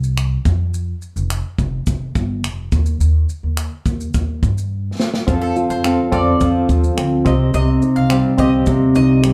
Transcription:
Already playing: C2
0.04 shaker
0.17 finger snap, shaker
0.45 F2, kick, shaker
0.74 shaker
1.02 shaker
1.16 F1, shaker
1.30 finger snap, shaker
1.59 F1, kick, shaker
1.86 F1, kick, shaker
2.15 G1, kick, shaker
2.44 F1, finger snap, shaker
2.72 D#2, kick, shaker
2.86 shaker
3.00 D#2, shaker
3.29 shaker
3.43 D#2
3.57 finger snap, shaker
3.86 D#2, kick, shaker
4.00 shaker
4.14 D#2, kick, shaker
4.43 G2, kick, shaker
4.58 shaker
5.00 snare
5.14 snare
5.27 F2 F3 C4 G#4 F5, kick, shaker
5.34 A4
5.41 A4
5.56 F4, shaker
5.70 F2 C5, shaker
5.84 C4 A4 F5, finger snap, shaker
6.12 F2 C4 A4 D5 F5, kick, shaker
6.41 F2 F3, kick, shaker
6.69 D#2 F4, kick, shaker
6.84 shaker
6.97 D2 C4, finger snap, shaker
7.25 C2 C3 C4 G4 D#5, finger snap, kick, shaker
7.54 C2 C3 D#5, shaker
7.82 D#4, shaker
7.96 C2 F5
8.10 G3 C4 G4 F5, finger snap, shaker
8.38 C2 C4 G4 D#5, kick, shaker
8.66 D#2 C3, kick, shaker
8.95 C2 D#4 D#5, shaker
9.23 G3, finger snap, shaker

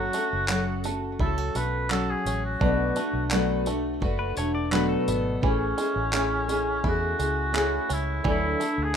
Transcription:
Already playing: F#3 A3 C#4 F#4 A4
0.13 A3 C#4 F#4 A4, tambourine
0.33 F#1
0.48 F#3 C#4 F#4 A4, clap
0.84 A3 C#4 F#4 A4, tambourine
1.19 C#2 F#3 C#4 E4 F#4 A4, kick
1.38 F#4
1.54 B1 A3 C#4 F#4 A4 B4, tambourine
1.90 F#3 C#4 F#4 A4, clap
2.10 G#4
2.26 A1 C#4, tambourine
2.45 F#4
2.59 B1 B2 D3 F#3 A3 D4 F#4 B4, kick
2.96 A3 D4 F#4 B4, tambourine
3.13 B1
3.30 B2 F#3 A3 D4 F#4 B4, clap
3.65 A3 D4 F#4 B4, tambourine
4.00 F#1 A3 D4 F#4 B4, kick
4.19 B4
4.35 E1 A3 D4 F#4 B4 C#5, tambourine
4.55 D5
4.71 B2 F#3 A3 D4 F#4 B4, clap
4.89 A4
5.08 G#1 B3, tambourine
5.41 A1 E3 A3 C#4 E4 G#4, kick
5.46 C#4
5.78 G#3 C#4 E4 G#4, tambourine
5.96 A1
6.12 A3 C#4 E4 G#4, clap
6.48 G#3 C#4 E4 G#4, tambourine
6.83 E2 A3 C#4 E4 G#4, kick
6.88 F#4
7.19 C#2 G#3 C#4 E4 G#4, tambourine
7.52 A3 C#4 E4 G#4, clap
7.89 C#2 C#4 E4, tambourine
8.24 D2 D3 E3 F#3 D4 E4 A4, kick
8.29 E4
8.60 A3 D4 E4 A4, tambourine
8.78 D2
8.83 G#4

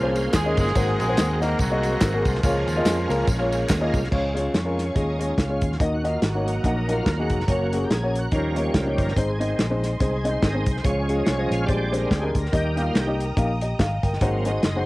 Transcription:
Already playing: C2 F3 G#3 A#3 C#4 F4 G#4 C5
0.02 A#3 C#4 G#4 C5
0.15 ride, tambourine
0.33 D#2 G#3 G#4, kick, snare, clap, ride, tambourine
0.45 A#3 C#4 G#4 D#5
0.57 G1 G#3 C4 D#4 G#4, kick, ride, tambourine
0.67 snare
0.75 G#1 G#2 G#3 A#3 C4 F#4 G#4 A#4 C5, kick, ride, tambourine
0.99 A#1 G#3 C4 D#4 G#4, ride, tambourine
1.08 A#3 F#4 G#4 C5
1.17 D#2, snare, clap, ride, tambourine
1.40 A#3 F#4 G#4 A#4 D#5, snare, ride, tambourine
1.59 C2 F#3 A#3 C4 F#4, kick, ride, tambourine
1.70 A#3 F#4 G#4 D#5
1.83 ride, tambourine
2.01 G#1, kick, snare, clap, ride, tambourine
2.14 A#3 F#4 G#4 A#4
2.25 C2 F3 G#3 A#3 F4, kick, ride, tambourine
2.35 snare
2.43 C#2 C#3 G#3 A#3 C#4 F4 G#4 A#4 C#5, kick, ride, tambourine
2.68 D#2, ride, tambourine
2.76 A#3 F4 G#4 D#5
2.85 F2, snare, clap, ride, tambourine
3.09 C#2 A#3 F4 G#4 A#4, ride, tambourine
3.27 A#1, kick, ride, tambourine
3.39 A#3 F4 G#4 C#5
3.52 ride, tambourine
3.69 D#2 D#5, kick, snare, clap, ride, tambourine
3.81 A#3 F4 G#4 D#5
3.92 C2 F5, kick, ride, tambourine
4.04 snare
4.11 C#2 C#3 F3 G#3 C#4 F4 C#5 F5 G#5 C#6, kick, crash
4.34 G#3 C#4 F4 C#5, closed hi-hat
4.54 F2, snare, closed hi-hat
4.65 G#3 C#4 F4 A#4
4.78 C#4, snare, closed hi-hat
4.95 D#2 G#3 C#4 D#4 F4 G#4, kick, closed hi-hat
5.19 G#3 C#4 F4 C#5, closed hi-hat
5.38 C#2 F4, kick, snare, closed hi-hat
5.49 G#3 C#4 F4 C#5
5.61 D#2, kick, closed hi-hat
5.72 snare
5.80 D#2 D#3 A#3 D#4 F#4 A#4 D#5 F#5 A#5, kick, closed hi-hat
5.94 F#4
6.04 A#3 D#4 F#4 D#5, closed hi-hat
6.08 F4
6.22 G#1 F#4, snare, closed hi-hat
6.34 A#3 D#4 F#4 C#5
6.46 F#3 A#3 D#4, closed hi-hat
6.64 A#1 A#3 D#4 F#4 F#5, kick, closed hi-hat
6.88 A#3 D#4 F#4 A#4, closed hi-hat
6.92 F4
7.06 D#2, kick, snare, closed hi-hat
7.18 A#3 D#4 F#4 G#4
7.30 F1, kick, closed hi-hat
7.40 snare
7.47 F#1 F#3 A#3 C#4 F#4 C#5, kick, closed hi-hat
7.72 A#3 C#4 F#4 G#4, closed hi-hat
7.84 G4
7.90 A#1 G#4, snare, closed hi-hat
8.03 A#3 C#4 F#4 C#5
8.15 F#4, closed hi-hat
8.32 D#2 D#3 F3 G3 A#3 C#4 D#4 G4 A#4 C#5 D#5 G5, kick, closed hi-hat
8.55 A#3 D#4 G4 C#5, closed hi-hat
8.62 C#5
8.74 C#2 A#4, kick, snare, closed hi-hat
8.86 A#3 D#4 F#4 G4 C#5
8.98 G1, kick, closed hi-hat
9.03 A#4
9.08 snare
9.15 G#1 G#2 G#3 C4 D#4 C5 G#5 C6, kick, closed hi-hat
9.30 G#4
9.39 D#3 G#3 C4 D#4 D#5, closed hi-hat
9.59 A#1, snare, closed hi-hat
9.70 G#3 C4 D#4 C5
9.83 snare, closed hi-hat
10.00 C2 G#3 C4 D#4 G#4 C5, kick, closed hi-hat
10.24 G#3 C4 D#4 D#5, closed hi-hat
10.29 C5
10.42 G#1 D#3 G#3 C4 D#5, kick, snare, closed hi-hat
10.53 G#3 C4 D#4 C5
10.66 C2, kick, closed hi-hat
10.71 C5
10.77 snare
10.84 C#2 C#3 F3 G#3 C#4 F4 C#5 F5 C#6, kick, closed hi-hat
11.08 G#3 C#4 F4 G#4, closed hi-hat
11.13 D#5
11.26 C2 C#5, snare, closed hi-hat
11.37 G#3 C#4 F4 C5 D#5
11.51 A#1 F5, snare, closed hi-hat
11.66 A#1 A#2 G3 G#3 C4 D4 G4 C5 D5 G5 C6, kick, closed hi-hat
11.91 G#3 D4 G4 A#4 C5, closed hi-hat
12.09 D2 G#4, kick, snare, closed hi-hat
12.22 G#3 D4 G4 A#4
12.35 D2 A#4, kick, closed hi-hat
12.45 snare
12.52 D#2 D#3 G3 A#3 D#4 G4 D#5 A#5 D#6, kick, closed hi-hat
12.76 A#3 D#4 G4 F5, closed hi-hat
12.82 F4
12.95 C2 G4, snare, closed hi-hat
13.07 A#3 D#4 G4 D#5
13.20 closed hi-hat
13.26 A#4
13.37 A#1 A#3 D#4 G4 F5, kick, closed hi-hat
13.61 G4 D#5, closed hi-hat
13.79 G#1 F5, kick, snare, closed hi-hat
14.03 G1 A#4 G5, kick, closed hi-hat
14.13 snare
14.20 G#1 G#2 F#3 G#3 A#3 C4 D#4 F#4 C5 F#5 G#5 C6, kick, closed hi-hat
14.45 G#3 D#4 F#4 C5 D#5, closed hi-hat
14.63 F#1, snare, closed hi-hat
14.75 G#3 D#4 F#4 C5

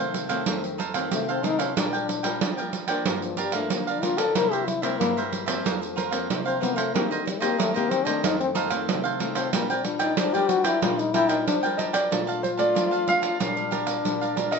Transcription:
Already playing: C3
0.00 D#3 A3 C4 A4 C5 F5
0.14 pandeiro
0.29 D#3 A3 C4 A4 C5 F5, pandeiro
0.46 F2 D#3 A3 C4 D#4 A4 C5 F5, pandeiro
0.64 muted cavaquinho stroke, pandeiro
0.78 D#4 A4 C5 F5, pandeiro
0.94 D#3 A3 C4 A4 C5 F5, pandeiro
1.11 C3 A3, pandeiro
1.29 C4 A4 C5 F5, pandeiro
1.43 D#3 A3 C4 D#4 A4 C5 F5, pandeiro
1.59 C#4 A4 C5 F5, pandeiro
1.76 A#2 G3 D4 F4 A#4 D5 G5, pandeiro
1.93 A#4 D5 G5, pandeiro
2.08 muted cavaquinho stroke, pandeiro
2.23 G3 D4 F4 A#4 D5 G5, pandeiro
2.41 F3 D4 A#4 D5 G5, pandeiro
2.57 G3 D4 F4 A#4 D5 G5, pandeiro
2.73 pandeiro
2.88 F3 A#3 D4 A#4 D5 G5, pandeiro
3.06 G2 G4 A#4 D5 F5, pandeiro
3.22 F3, muted cavaquinho stroke, pandeiro
3.37 G3 G4 A#4 D5 F5, pandeiro
3.52 F3 A3 A#3 D4 A#4 D5 F5, pandeiro
3.70 D3 A#3, pandeiro
3.87 D4 A#4 D5 F5, pandeiro
4.02 F3 A#3 D4 F4 G4 A#4 D5 F5, pandeiro
4.17 A4 A#4 D5 F5, pandeiro
4.35 C3 G3 A#3 E4 A#4 C5 E5, pandeiro
4.52 G4 A#4 C5 E5, pandeiro
4.66 E4, muted cavaquinho stroke, pandeiro
4.82 G3 A#3 C4 E4 A#4 C5 E5, pandeiro
4.99 G2 A#3 E4 A#4 C5 E5, pandeiro
5.17 G3 A#3 E4 A#4 C5 E5, pandeiro
5.33 pandeiro
5.46 F3 A#3 C4 A#4 C5 E5, pandeiro
5.64 F2 F4 A#4 C5 F5, pandeiro
5.82 muted cavaquinho stroke, pandeiro
5.96 F4 A#4 C5 F5, pandeiro
6.11 F3 A#3 C4 A#4 C5 F5, pandeiro
6.30 C3, pandeiro
6.45 C4 A#4 C5 F5, pandeiro
6.60 F3 A#3 B3 C4 F4 A#4 C5 F5, pandeiro
6.76 A3 A#4 C5 F5, pandeiro
6.93 D#3 A#3 C4 D#4 G4 A#4 C5 D#5, pandeiro
7.10 D3 A#4 C5 D#5, pandeiro
7.25 G3, muted cavaquinho stroke, pandeiro
7.40 A#3 C4 G4 A#4 C5 D#5, pandeiro
7.58 D#3 A3 D#4 A#4 C5 D#5, pandeiro
7.74 A#3 C4 G4 A#4 C5 D#5, pandeiro
7.90 C4, pandeiro
8.05 D#3 A3 C4 D4 A#4 C5 D#5, pandeiro
8.23 F2 D#4 A4 C5 F5, pandeiro
8.40 C4, muted cavaquinho stroke, pandeiro
8.55 D#4 A4 C5 F5, pandeiro
8.70 D#3 A3 C4 A4 C5 F5, pandeiro
8.88 C3, pandeiro
9.04 A4 C5 F5, pandeiro
9.19 D#3 A3 C4 D#4 A4 C5 F5, pandeiro
9.35 C4 A4 C5 F5, pandeiro
9.53 A#2 G3 A#3 D4 F4 A#4 D5 G5, pandeiro
9.70 C4 A#4 D5 G5, pandeiro
9.84 G3 D4 F4, muted cavaquinho stroke, pandeiro
9.99 D#4 A#4 D5 G5, pandeiro
10.17 F3 D4 A#4 D5 G5, pandeiro
10.34 G3 D4 F4 G4 A#4 D5 G5, pandeiro
10.49 F#4, pandeiro
10.64 E4 A#4 D5 G5, pandeiro
10.82 A#2 G3 D4 F4 A#4 D5 G5, pandeiro
10.99 D#4, muted cavaquinho stroke, pandeiro
11.13 G3 D4 E4 F4 A#4 D5 G5, pandeiro
11.29 D#4 A#4 D5 G5, pandeiro
11.46 F3 D4, pandeiro
11.63 G3 D4 F4 A#4 D5 G5, pandeiro
11.77 D4 A#4 D5 D#5 G5, pandeiro
11.93 A#4 D5 G5, pandeiro
12.11 A#2 A3 D4 F4 A#4 D5 F5 A5, pandeiro
12.27 D5 F5 A5, pandeiro
12.43 C5, muted cavaquinho stroke, pandeiro
12.57 A3 D4 F4 D5 F5 A5, pandeiro
12.74 F3 A#4 D5 F5 A5, pandeiro
12.91 D5 F5 A5, pandeiro
13.07 A3 D4 F4 F5, pandeiro
13.22 D5 F5 A5, pandeiro
13.40 A#2 G3 D4 F4 G4 A#4 D5 F5, pandeiro
13.56 G3 D4 F4, muted cavaquinho stroke, pandeiro
13.71 G4 A#4 D5 F5, pandeiro
13.87 A#4 D5 F5, pandeiro
14.05 A#2 G3 D4 F4, pandeiro
14.21 A#4 D5 F5, pandeiro
14.36 G3 D4 F4 G4 A#4 D5 F5, pandeiro
14.51 A#4 D5 D#5 F5, pandeiro

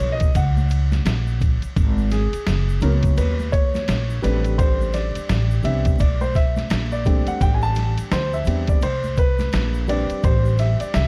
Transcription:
Already playing: F#3 A#3 B3 C#4 C#5
0.00 B1
0.12 D#5
0.20 kick, ride, shaker
0.35 C#2 F#5, kick, ride, high conga, shaker
0.57 high conga, shaker
0.70 ride, shaker
0.92 snare, ride, high conga, shaker
1.05 A#1, snare, hi-hat pedal, ride, shaker
1.27 shaker
1.41 kick, ride, low conga, shaker
1.62 muted upright bass stroke, ride, shaker
1.76 G#1, kick, ride, shaker
1.98 high conga, shaker
2.11 G#4, snare, ride, shaker
2.33 muted upright bass stroke, ride, shaker
2.47 F#1, snare, hi-hat pedal, ride, low conga, shaker
2.69 shaker
2.81 C#2 F#3 A#3 B3 C#4 A#4, ride, low conga, shaker
3.03 kick, ride, shaker
3.17 D#2 B4, ride, high conga, shaker
3.39 high conga, shaker
3.52 C#5, kick, ride, shaker
3.74 snare, ride, high conga, shaker
3.88 A#1, snare, hi-hat pedal, ride, shaker
4.10 shaker
4.22 A1 G3 A3 C4 D4 B4, ride, low conga, shaker
4.44 ride, shaker
4.58 C5, kick, ride, shaker
4.81 high conga, shaker
4.93 D5, snare, ride, shaker
5.15 muted upright bass stroke, ride, shaker
5.29 A1, snare, hi-hat pedal, ride, low conga, shaker
5.51 shaker
5.63 C2 G3 B3 C4 D4 E5, ride, low conga, shaker
5.85 kick, ride, shaker
5.99 B1 D5, kick, ride, high conga, shaker
6.21 C5, high conga, shaker
6.34 E5, kick, snare, ride, shaker
6.56 snare, ride, high conga, shaker
6.70 A#1, snare, hi-hat pedal, ride, shaker
6.91 D5, shaker
7.05 G3 A3 C4 D4, kick, ride, low conga, shaker
7.27 F#5, muted upright bass stroke, ride, high conga, shaker
7.41 A1 G5, kick, ride, shaker
7.54 G#5
7.62 A5, high conga, shaker
7.75 snare, ride, shaker
7.97 muted upright bass stroke, ride, shaker
8.11 D2 C5, snare, hi-hat pedal, ride, low conga, shaker
8.33 E5, shaker
8.45 E2 G3 B3 C4 D4, ride, low conga, shaker
8.67 D5, kick, ride, shaker
8.81 C2 C5, ride, high conga, shaker
9.04 high conga, shaker
9.16 B4, kick, ride, shaker
9.39 snare, ride, high conga, shaker
9.53 A#1, snare, hi-hat pedal, ride, shaker
9.74 shaker
9.88 G3 C4 D4 B4 D5, ride, low conga, shaker
10.09 muted upright bass stroke, ride, shaker
10.24 A1 C5, kick, ride, shaker
10.45 high conga, shaker
10.58 E5, snare, ride, shaker
10.80 D5, muted upright bass stroke, ride, shaker
10.94 C2 E5, snare, hi-hat pedal, ride, low conga, shaker

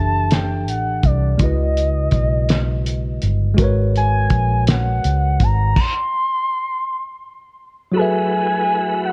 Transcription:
Already playing: F#1 E3 D4 G4 A4 E5 A5
0.31 G5, snare, closed hi-hat
0.68 A1 F#5, closed hi-hat
1.03 C2 D5, kick, closed hi-hat
1.36 C#3 G#3 E4, kick, closed hi-hat
1.40 C#2 F#4 B4 D#5
1.46 D#5
1.77 closed hi-hat
2.11 B1, kick, closed hi-hat
2.49 snare, closed hi-hat
2.86 closed hi-hat
3.22 G1, closed hi-hat
3.54 G#3 F#4, kick, closed hi-hat
3.59 G#1 A#4 B4
3.64 C#5
3.96 G#5, closed hi-hat
4.30 A#1, kick, closed hi-hat
4.67 F#5, snare, closed hi-hat
5.04 C#2, closed hi-hat
5.40 G#1 A#5, kick, closed hi-hat
5.76 C6, kick, crash
7.92 F#3 A3 E4 F#4 B4
7.96 G#4 A4 B4 G#5
8.02 E5
9.05 F#5

